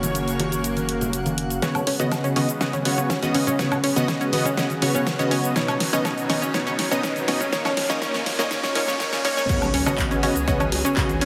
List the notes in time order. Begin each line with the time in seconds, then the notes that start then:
Already playing: F#1 C#3 F#3 A#3 F#4 C#5 F5 F#5
0.03 closed hi-hat, high conga, low conga, cabasa
0.15 closed hi-hat, cabasa
0.28 closed hi-hat, cabasa
0.40 closed hi-hat, high bongo, high conga
0.52 closed hi-hat, cabasa
0.64 closed hi-hat, cabasa
0.77 closed hi-hat, high conga, cabasa
0.89 closed hi-hat
1.01 closed hi-hat, high bongo, low conga, cabasa
1.13 closed hi-hat, cabasa
1.26 closed hi-hat, high conga, cabasa
1.38 closed hi-hat
1.50 closed hi-hat, cabasa
1.62 C#3 F#3 G#3 B3 C#4 F#4 C#5, kick, snare, closed hi-hat, riser, high conga, cabasa
1.75 closed hi-hat, low conga, cabasa, high woodblock
1.87 C#4, open hi-hat
2.00 C#3 B3 C#4 F#4 D#5, closed hi-hat, high conga, cabasa
2.12 kick, snare, closed hi-hat, cabasa, high woodblock
2.24 C#4, closed hi-hat, cabasa
2.36 C#3 B3 C#4 F#4 D#5, open hi-hat, high conga
2.49 closed hi-hat, cabasa
2.61 C#3 B3 C#4 F#4 D#5, kick, snare, closed hi-hat, cabasa
2.73 C#4, closed hi-hat, high conga, cabasa
2.85 C#3 B3 F#4 C#5, open hi-hat
2.98 C#4, closed hi-hat, cabasa
3.10 C#4, kick, snare, closed hi-hat, cabasa
3.23 C#3 B3 F#4 D#5, closed hi-hat, high conga, cabasa
3.35 C#4, open hi-hat
3.47 C#4, closed hi-hat, low conga, cabasa
3.59 C#3 B3 F#4 C#5, kick, snare, closed hi-hat, high conga, cabasa
3.71 C#4, closed hi-hat, low conga, cabasa, high woodblock
3.84 C#4, open hi-hat
3.96 C#3 B3 F#4 D#5, closed hi-hat, high conga, cabasa
4.08 C#4, kick, snare, closed hi-hat, cabasa
4.21 C#4, closed hi-hat, cabasa
4.32 C#3 B3 F#4 D#5, open hi-hat, high conga
4.45 C#4, closed hi-hat, cabasa
4.57 C#3 B3 C#4 F#4 D#5, kick, snare, closed hi-hat, cabasa
4.70 closed hi-hat, high conga, cabasa
4.82 C#3 B3 C#4 F#4 C#5, open hi-hat
4.95 C#4, closed hi-hat, low conga, cabasa
5.07 kick, snare, closed hi-hat, cabasa
5.19 C#3 B3 C#4 F#4 D#5, closed hi-hat, high conga, cabasa
5.31 C#4, open hi-hat
5.44 closed hi-hat, cabasa
5.56 B2 D#3 B3 C#4 D#4 C#5, kick, snare, closed hi-hat, high conga, cabasa
5.68 C#4, closed hi-hat, low conga, cabasa, high woodblock
5.80 snare, open hi-hat
5.93 B2 B3 C#4 D#4 D#5, closed hi-hat, high conga, cabasa
6.05 C#4, kick, snare, closed hi-hat, cabasa, high woodblock
6.18 closed hi-hat, cabasa
6.29 B2 B3 C#4 D#4 D#5, snare, open hi-hat, high conga
6.42 C#4, cabasa
6.54 B2 B3 C#4 D#4 C#5, kick, snare, closed hi-hat, cabasa
6.67 C#4, closed hi-hat, high conga, cabasa
6.79 snare, open hi-hat
6.91 B2 B3 C#4 D#4 D#5, closed hi-hat, cabasa
7.03 C#4, kick, snare, closed hi-hat, cabasa
7.16 closed hi-hat, high conga, cabasa
7.28 B2 B3 C#4 D#4 D#5, snare, open hi-hat
7.40 C#4, closed hi-hat, low conga, cabasa
7.53 A#2 F3 A#3 C#4 D#4 C#5, kick, snare, closed hi-hat, high conga, cabasa
7.65 C#4, snare, closed hi-hat, low conga, cabasa, high woodblock
7.77 snare, open hi-hat
7.90 A#2 A#3 C#4 D#4 D#5, snare, closed hi-hat, high conga, cabasa
8.02 A#2 A#3 C#4 D#4 C#5, kick, snare, closed hi-hat, cabasa
8.14 C#4, snare, closed hi-hat, cabasa
8.26 snare, open hi-hat, high conga
8.39 A#2 A#3 C#4 D#4 D#5, snare, closed hi-hat, cabasa
8.51 A#2 A#3 C#4 D#4 C#5, kick, snare, closed hi-hat, cabasa
8.63 C#4, snare, closed hi-hat, high conga, cabasa
8.75 A#2 A#3 C#4 D#4 C#5, snare, open hi-hat
8.87 C#4, snare, closed hi-hat, low conga, cabasa
9.00 A#2 A#3 C#4 D#4 C#5, kick, snare, closed hi-hat, cabasa
9.13 C#4, snare, closed hi-hat, high conga, cabasa
9.25 A#2 A#3 C#4 D#4 C#5, snare, open hi-hat
9.37 C#4, snare, cabasa
9.49 C#3 F#3 B3 C#4 F#4 G#4 C#5, kick, closed hi-hat, crash, impact, high conga, cabasa
9.62 closed hi-hat, low conga, cabasa, high woodblock
9.74 C#2 C#4, open hi-hat
9.86 C#3 B3 C#4 F#4 D#5, closed hi-hat, high conga, cabasa, high woodblock
9.98 kick, clap, closed hi-hat, high bongo, cabasa
10.11 G#1 C#4, closed hi-hat, cabasa
10.23 C#3 B3 C#4 F#4 D#5, open hi-hat, high conga
10.36 C#2, closed hi-hat, cabasa
10.48 C#3 B3 C#4 F#4 D#5, kick, closed hi-hat, cabasa
10.60 C#4, closed hi-hat, high conga, cabasa, high woodblock
10.72 C#2, open hi-hat, high bongo
10.85 C#4, closed hi-hat, cabasa
10.97 C#3 B3 C#4 F#4 D#5, kick, clap, closed hi-hat, cabasa
11.09 C#2, closed hi-hat, high conga, cabasa
11.21 C#4, open hi-hat